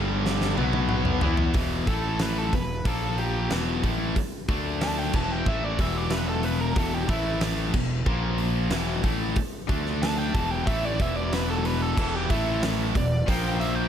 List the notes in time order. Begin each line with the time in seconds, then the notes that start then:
Already playing: G1 G2 D3 G3 D4 A4
0.26 snare
0.41 snare
0.57 B1 B2 F#3 B3 F#4 B4, high tom
0.73 high tom
0.89 mid tom
1.05 mid tom
1.21 E2 E3 B3 E4 F#5, floor tom
1.37 floor tom
1.54 E1 E2 B2 E3, kick, open hi-hat
1.87 A1 A2 E3 A3 A4, kick, open hi-hat
2.19 B4, snare, open hi-hat
2.38 A4
2.53 E1 E2 B2 B4, kick, open hi-hat
2.85 A#1 A#2 F3 A#3 A4, kick, open hi-hat
3.18 G4, open hi-hat
3.50 E1 E2 B2 E3, snare, open hi-hat
3.83 A1 A2 E3 A3, kick, open hi-hat
4.16 muted fingered electric bass stroke, muted distorted electric guitar stroke, muted overdriven electric guitar stroke, kick, open hi-hat
4.49 D2 D3 A3 D4, kick, open hi-hat
4.81 A5, snare, open hi-hat
4.99 G5
5.13 E1 E2 B2 E3 A5, kick, crash
5.32 G5
5.46 A1 A2 E3 A3 E5, kick
5.65 D5
5.79 E1 E2 B2 E3 E5, kick, open hi-hat
5.97 D5
6.10 B4, snare, open hi-hat
6.29 A4
6.43 B4, open hi-hat
6.61 A#4
6.76 E1 E2 B2 E3 A4, kick, open hi-hat
6.94 G4
7.07 A1 A2 E3 A3 E4, kick, open hi-hat
7.41 snare, open hi-hat
7.73 E1 E2 B2, kick, crash
8.06 A#1 A#2 F3 A#3, kick
8.38 open hi-hat
8.70 E1 E2 B2 E3, snare, open hi-hat
9.04 A1 A2 E3 A3, kick, open hi-hat
9.36 muted fingered electric bass stroke, muted overdriven electric guitar stroke, muted distorted electric guitar stroke, kick, open hi-hat
9.68 D2 D3 A3 D4, kick, open hi-hat
9.86 snare
10.02 A5, snare, open hi-hat
10.18 G5
10.34 E1 E2 B2 E3 A5, kick, open hi-hat
10.51 G5
10.67 A1 A2 E3 A3 E5, kick, open hi-hat
10.85 D5
10.99 E1 E2 B2 E3 E5, kick, open hi-hat
11.17 D5
11.33 B4, snare, open hi-hat
11.50 A4
11.65 B4, open hi-hat
11.82 A4
11.96 E1 E2 B2 E3 E4 A4 B4 F#5, kick, crash
12.15 G4
12.29 A1 A2 E3 A3 E4, kick, open hi-hat
12.34 A3 E4
12.63 snare, open hi-hat
12.94 E1 E2 B2 F#4 D5, kick, open hi-hat
12.99 E3 B3
13.27 A#1 A#2 F3 A#3 F4 C5 G5, kick, open hi-hat
13.31 A#3
13.60 E5, open hi-hat
13.75 G5